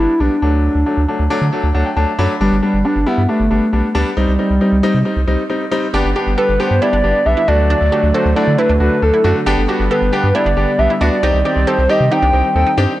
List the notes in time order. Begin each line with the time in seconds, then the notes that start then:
Already playing: G3 B3 D4 E4
0.20 B1 G3 B3 D4
0.42 D2 F#3 A3 D4
0.64 D4
0.75 D2
0.86 F#3 A3 D4
0.97 D2
1.08 F#3 A3 D4
1.19 D2
1.30 F#3 A3 D4
1.41 D3
1.52 F#3 A3 D4
1.63 D2
1.75 D2 F#3 A3 D4 F#5
1.86 G5
1.97 D2 F#3 A3 D4 A5
2.19 F#2 F#3 A3 D4 B5
2.41 G1 G3 B3 D4
2.52 G1
2.62 G3 B3 D4
2.74 G1
2.85 G3 B3 D4
2.96 G1
3.06 G3 B3 E4
3.18 G2
3.29 G3 A3 B3 D4
3.40 G1
3.50 G1 G3 B3 D4
3.73 B1 G3 B3 D4
3.95 D2 G3 B3 D4
4.17 C2 G3 C4 D#4
4.28 C2
4.39 G3 C4 D#4
4.50 C2
4.61 G3 C4 D#4
4.72 C2
4.83 G3 C4 D#4
4.94 C3
5.05 G3 C4 D#4
5.16 C2
5.27 C2 G3 C4 D#4
5.50 G3 C4 D#4
5.71 G3 C4 D#4
5.94 G1 D3 G3 B3 D4 G4
6.05 G1
6.16 B3 D4 G4
6.27 G1
6.38 B3 D4 G4 A4 B4
6.49 G1
6.59 B3 D4 G4 C5
6.71 G2
6.81 B3 D4 E4 G4 D5
6.93 G1 D4
7.04 G1 B3 D4 G4
7.26 B1 B3 D4 G4 E5
7.37 E4
7.48 D2 F#3 A3 D4 F#4 D5
7.70 D4
7.81 D2
7.92 A3 D4 F#4 G4
8.03 D2
8.14 A3 D4 F#4 A4 C5
8.25 D2
8.36 A3 D4 E4 F#4 D5
8.47 D3
8.58 A3 D4 E4 B4
8.69 D2 D4
8.80 D2 A3 D4 F#4 B4
9.02 D2 A3 D4 A4
9.14 E4
9.24 F#2 A3 D4 F#4
9.46 G1 G3 B3 D4 G4
9.58 G1
9.68 B3 D4 F#4 G4
9.80 G1
9.91 B3 D4 G4 A4 B4
10.02 G1
10.13 B3 D4 G4
10.24 G2
10.35 B3 D4 E4 G4 D5
10.46 G1 D4
10.57 G1 B3 D4 G4
10.79 B1 B3 D4 G4 E5
10.90 E4
11.01 D2 B3 D4 F#4 D5
11.23 C2 D#3 C4 D#4 G4
11.34 C2
11.45 C4 D#4 G4 D5
11.56 C2
11.67 C4 D#4 G4 A4 C5
11.78 C2
11.89 C4 D#4 G4 D#5
12.00 C3
12.11 C4 D#4 G4 G5
12.22 C2 D4
12.33 C2 C4 D#4 G4
12.55 D#2 C4 D#4 A4 G5
12.66 D#4
12.78 G2 C4 D4 D#4 G4